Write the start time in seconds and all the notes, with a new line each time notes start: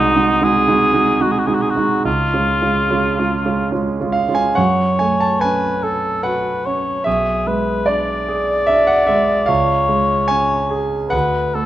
Already playing: C2 G#3 D#4 F#4
0.16 G#3 D#4 F#4
0.42 G#3 D#4 F#4 G#4
0.68 G#3 D#4 F#4
0.93 G#3 D#4 F#4
1.20 G#3 D#4 F#4
1.31 G#4
1.39 F#4
1.47 G#3 D#4 F#4 G#4
1.54 F#4
1.62 G#4
1.70 F#4
1.76 G#3 D#4 F#4
2.05 C#2 F4
2.34 G#3 C#4 F4
2.62 G#3 C#4 F4
2.90 G#3 C#4 F4
3.19 G#3 C#4 F4
3.46 G#3 C#4 F4
3.71 G#3 C#4 F4
4.00 G#3 C#4 F4
4.12 F5
4.29 G#3 C#4 F4
4.35 G#5
4.55 F#2 C#5 F#5
4.99 A3 G#5
5.20 A5
5.40 C#4 B4 G#5
5.83 A4
6.23 F#4 B4 F#5
6.66 C#4 C#5
7.04 B1 G#4 E5
7.47 G#3 B4
7.86 D4 D5
8.29 G#4
8.67 D4 E5
8.87 F#5
9.07 G#3 E5
9.46 C#2 C#5 F5
9.89 G#3
10.28 C#4 G#5
10.71 G#4
11.09 D2 B4 F#5
11.54 A3 A4